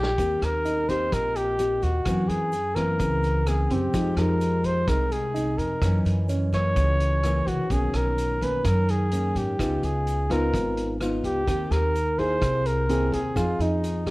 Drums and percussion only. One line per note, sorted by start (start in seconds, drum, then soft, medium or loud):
0.03 snare medium
0.18 kick soft
0.18 closed hi-hat soft
0.18 shaker medium
0.42 cross-stick medium
0.42 closed hi-hat soft
0.42 shaker soft
0.65 closed hi-hat soft
0.65 shaker medium
0.89 kick soft
0.89 closed hi-hat soft
0.89 shaker soft
1.12 kick medium
1.12 cross-stick medium
1.12 closed hi-hat medium
1.12 shaker medium
1.35 closed hi-hat soft
1.35 shaker soft
1.59 closed hi-hat soft
1.59 shaker medium
1.82 kick soft
1.82 closed hi-hat soft
1.82 shaker soft
2.05 kick soft
2.05 cross-stick medium
2.05 closed hi-hat medium
2.05 shaker medium
2.29 closed hi-hat soft
2.29 shaker soft
2.52 closed hi-hat soft
2.52 shaker medium
2.76 kick soft
2.76 cross-stick medium
2.76 closed hi-hat soft
2.76 shaker soft
3.00 kick medium
3.00 closed hi-hat medium
3.00 shaker medium
3.23 closed hi-hat soft
3.23 shaker soft
3.47 cross-stick medium
3.47 closed hi-hat soft
3.47 shaker medium
3.70 kick soft
3.70 closed hi-hat soft
3.70 shaker soft
3.94 kick medium
3.94 closed hi-hat medium
3.94 shaker medium
4.17 cross-stick medium
4.17 closed hi-hat soft
4.17 shaker soft
4.41 closed hi-hat soft
4.41 shaker medium
4.64 kick soft
4.64 closed hi-hat soft
4.64 shaker soft
4.88 kick medium
4.88 cross-stick medium
4.88 closed hi-hat medium
4.88 shaker medium
5.11 closed hi-hat soft
5.11 shaker soft
5.36 closed hi-hat soft
5.36 shaker medium
5.58 kick soft
5.58 closed hi-hat soft
5.58 shaker soft
5.82 kick medium
5.82 cross-stick medium
5.82 closed hi-hat medium
5.82 shaker medium
6.06 closed hi-hat soft
6.06 shaker soft
6.29 closed hi-hat soft
6.29 shaker medium
6.52 kick soft
6.52 cross-stick medium
6.52 closed hi-hat soft
6.52 shaker soft
6.76 kick medium
6.76 closed hi-hat medium
6.76 shaker medium
7.00 closed hi-hat soft
7.00 shaker soft
7.23 cross-stick medium
7.23 closed hi-hat soft
7.23 shaker medium
7.47 kick soft
7.47 closed hi-hat soft
7.47 shaker soft
7.70 kick medium
7.70 closed hi-hat medium
7.70 shaker medium
7.94 cross-stick medium
7.94 closed hi-hat soft
7.94 shaker soft
8.18 closed hi-hat soft
8.18 shaker medium
8.41 kick soft
8.41 closed hi-hat soft
8.41 shaker soft
8.65 kick medium
8.65 cross-stick medium
8.65 closed hi-hat medium
8.65 shaker medium
8.89 closed hi-hat soft
8.89 shaker soft
9.11 closed hi-hat soft
9.11 shaker medium
9.35 kick soft
9.35 closed hi-hat soft
9.35 shaker soft
9.59 kick soft
9.59 cross-stick medium
9.59 closed hi-hat medium
9.59 shaker medium
9.83 closed hi-hat soft
9.83 shaker soft
10.07 closed hi-hat soft
10.07 shaker medium
10.30 kick soft
10.30 cross-stick medium
10.30 closed hi-hat soft
10.30 shaker soft
10.54 kick medium
10.54 closed hi-hat medium
10.54 shaker medium
10.77 closed hi-hat soft
10.77 shaker soft
11.01 cross-stick medium
11.01 closed hi-hat soft
11.01 shaker medium
11.24 kick soft
11.24 closed hi-hat soft
11.24 shaker soft
11.48 kick medium
11.48 closed hi-hat medium
11.48 shaker medium
11.72 cross-stick medium
11.72 closed hi-hat soft
11.72 shaker soft
11.95 closed hi-hat soft
11.95 shaker medium
12.18 kick soft
12.18 closed hi-hat soft
12.18 shaker soft
12.42 kick medium
12.42 cross-stick medium
12.42 closed hi-hat medium
12.42 shaker medium
12.65 closed hi-hat soft
12.65 shaker soft
12.89 closed hi-hat soft
12.89 shaker medium
13.12 kick soft
13.12 closed hi-hat soft
13.12 shaker soft
13.36 kick soft
13.36 cross-stick medium
13.36 closed hi-hat soft
13.36 shaker medium
13.60 closed hi-hat soft
13.60 shaker soft
13.84 closed hi-hat soft
13.84 shaker medium
14.07 kick soft
14.07 cross-stick medium
14.07 closed hi-hat soft